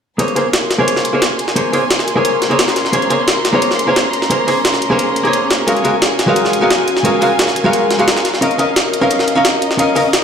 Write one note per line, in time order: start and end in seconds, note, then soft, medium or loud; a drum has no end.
0.18 0.33 A#3 medium
0.18 8.38 C#4 medium
0.18 0.34 G#4 medium
0.18 5.64 A#4 medium
0.18 0.34 C5 medium
0.18 0.34 C#5 medium
0.18 2.91 G#5 medium
0.18 5.64 C6 medium
0.18 closed hi-hat medium
0.28 closed hi-hat soft
0.35 0.46 A#3 medium
0.35 0.46 G#4 medium
0.35 0.46 C5 medium
0.35 0.47 C#5 medium
0.35 closed hi-hat medium
0.53 snare loud
0.53 closed hi-hat medium
0.71 snare medium
0.71 closed hi-hat medium
0.78 1.11 A#3 medium
0.78 1.11 G#4 medium
0.78 1.12 C5 medium
0.78 1.12 C#5 loud
0.88 closed hi-hat medium
0.96 snare soft
1.05 closed hi-hat medium
1.13 1.23 A#3 medium
1.13 1.23 G#4 medium
1.13 1.23 C5 medium
1.13 1.24 C#5 loud
1.22 snare loud
1.22 closed hi-hat medium
1.39 closed hi-hat medium
1.48 snare soft
1.56 1.71 A#3 medium
1.56 1.71 G#4 medium
1.56 1.71 C5 medium
1.56 1.72 C#5 medium
1.56 closed hi-hat medium
1.73 1.83 A#3 medium
1.73 1.83 G#4 medium
1.73 1.84 C5 medium
1.73 1.84 C#5 medium
1.73 closed hi-hat medium
1.73 open hi-hat medium
1.91 snare loud
1.91 closed hi-hat medium
1.99 snare soft
2.08 closed hi-hat medium
2.16 2.48 A#3 medium
2.16 2.49 G#4 medium
2.16 2.49 C5 medium
2.16 2.49 C#5 loud
2.25 closed hi-hat medium
2.42 snare soft
2.42 closed hi-hat medium
2.50 2.60 A#3 medium
2.50 2.60 G#4 medium
2.50 2.60 C5 medium
2.50 2.61 C#5 loud
2.50 closed hi-hat soft
2.59 snare loud
2.59 closed hi-hat medium
2.68 snare medium
2.76 snare soft
2.76 closed hi-hat medium
2.85 snare soft
2.93 3.08 A#3 medium
2.93 3.08 G#4 medium
2.93 3.08 C5 medium
2.93 3.09 C#5 medium
2.93 5.65 A#5 medium
2.93 closed hi-hat medium
3.02 closed hi-hat soft
3.10 3.20 A#3 medium
3.10 3.20 G#4 medium
3.10 3.21 C5 medium
3.10 3.21 C#5 medium
3.10 closed hi-hat medium
3.28 snare loud
3.28 closed hi-hat medium
3.45 snare medium
3.45 closed hi-hat medium
3.53 3.85 A#3 medium
3.53 3.86 G#4 medium
3.53 3.86 C5 medium
3.53 3.86 C#5 loud
3.62 closed hi-hat medium
3.71 snare soft
3.79 closed hi-hat medium
3.87 3.97 A#3 medium
3.87 3.97 G#4 medium
3.87 3.98 C5 medium
3.87 3.98 C#5 loud
3.96 snare loud
3.96 closed hi-hat medium
4.13 closed hi-hat medium
4.22 snare soft
4.30 4.45 A#3 medium
4.30 4.45 G#4 medium
4.30 4.45 C5 medium
4.30 4.46 C#5 medium
4.30 closed hi-hat medium
4.47 4.57 A#3 medium
4.47 4.57 G#4 medium
4.47 4.58 C5 medium
4.47 4.58 C#5 medium
4.47 closed hi-hat medium
4.47 open hi-hat medium
4.65 snare loud
4.65 closed hi-hat medium
4.74 snare soft
4.82 closed hi-hat medium
4.90 5.22 A#3 medium
4.90 5.23 G#4 medium
4.90 5.23 C5 medium
4.90 5.24 C#5 loud
4.99 closed hi-hat medium
5.16 closed hi-hat medium
5.23 5.65 A#3 medium
5.23 5.65 G#4 medium
5.23 5.66 C5 medium
5.23 5.67 C#5 loud
5.23 closed hi-hat soft
5.33 closed hi-hat medium
5.50 snare medium
5.50 closed hi-hat medium
5.67 5.82 G#3 medium
5.67 5.82 F#4 medium
5.67 8.39 F#4 medium
5.67 5.82 A#4 medium
5.67 10.24 A#4 medium
5.67 5.83 C#5 medium
5.67 10.24 F5 medium
5.67 5.83 F5 medium
5.67 8.39 G#5 medium
5.67 closed hi-hat medium
5.76 closed hi-hat soft
5.84 5.94 G#3 medium
5.84 5.94 F#4 medium
5.84 5.95 A#4 medium
5.84 5.95 C#5 medium
5.84 5.95 F5 medium
5.84 closed hi-hat medium
6.02 snare loud
6.02 closed hi-hat medium
6.19 snare medium
6.19 closed hi-hat medium
6.27 6.60 G#3 medium
6.27 6.60 F#4 medium
6.27 6.60 A#4 medium
6.27 6.60 C#5 medium
6.27 6.61 F5 loud
6.36 closed hi-hat medium
6.45 snare soft
6.53 closed hi-hat medium
6.61 6.71 G#3 medium
6.61 6.71 F#4 medium
6.61 6.72 A#4 medium
6.61 6.72 C#5 medium
6.61 6.72 F5 loud
6.70 snare loud
6.70 closed hi-hat medium
6.88 closed hi-hat medium
6.97 snare soft
7.04 7.19 G#3 medium
7.04 7.19 F#4 medium
7.04 7.20 A#4 medium
7.04 7.20 C#5 medium
7.04 7.20 F5 medium
7.04 closed hi-hat medium
7.21 7.31 G#3 medium
7.21 7.32 F#4 medium
7.21 7.32 A#4 medium
7.21 7.32 C#5 medium
7.21 7.32 F5 medium
7.21 closed hi-hat medium
7.21 open hi-hat medium
7.39 snare loud
7.39 closed hi-hat medium
7.48 snare soft
7.56 closed hi-hat medium
7.64 7.97 G#3 medium
7.64 7.97 F#4 medium
7.64 7.97 A#4 medium
7.64 7.97 C#5 medium
7.64 7.98 F5 loud
7.73 closed hi-hat medium
7.91 snare soft
7.91 closed hi-hat medium
7.98 8.08 G#3 medium
7.98 8.09 F#4 medium
7.98 8.09 A#4 medium
7.98 8.09 C#5 medium
7.98 8.09 F5 loud
7.98 closed hi-hat soft
8.08 snare loud
8.08 closed hi-hat medium
8.17 snare medium
8.25 snare soft
8.25 closed hi-hat medium
8.34 snare soft
8.41 8.56 C#4 medium
8.41 10.24 C#4 medium
8.41 8.57 A#4 medium
8.41 10.24 D#5 medium
8.41 8.57 D#5 medium
8.41 8.57 F5 medium
8.41 closed hi-hat medium
8.51 closed hi-hat soft
8.58 8.69 C#4 medium
8.58 8.69 A#4 medium
8.58 8.69 D#5 medium
8.58 8.69 F5 medium
8.58 closed hi-hat medium
8.76 snare loud
8.76 closed hi-hat medium
8.93 closed hi-hat medium
9.01 9.34 C#4 medium
9.01 9.34 A#4 medium
9.01 9.35 D#5 medium
9.01 9.35 F5 loud
9.11 closed hi-hat medium
9.19 snare soft
9.28 closed hi-hat medium
9.35 9.46 C#4 medium
9.35 9.46 A#4 medium
9.35 9.46 D#5 medium
9.35 9.46 F5 loud
9.45 snare loud
9.45 closed hi-hat medium
9.62 closed hi-hat medium
9.71 snare soft
9.78 9.93 C#4 medium
9.78 9.94 A#4 medium
9.78 9.94 D#5 medium
9.78 9.94 F5 medium
9.78 closed hi-hat medium
9.95 10.06 C#4 medium
9.95 10.06 A#4 medium
9.95 10.06 D#5 medium
9.95 10.07 F5 medium
9.95 closed hi-hat medium
9.95 open hi-hat medium
10.13 snare loud
10.13 closed hi-hat medium